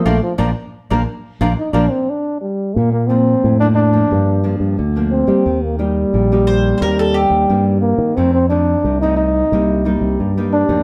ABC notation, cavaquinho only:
X:1
M:4/4
L:1/16
Q:1/4=89
K:Bb
V:1 name="Cavaquinho"
[FBd] z [FBd] z2 [FBd] z2 [FBd] z [FBd] z4 z | z16 | z16 | z16 |]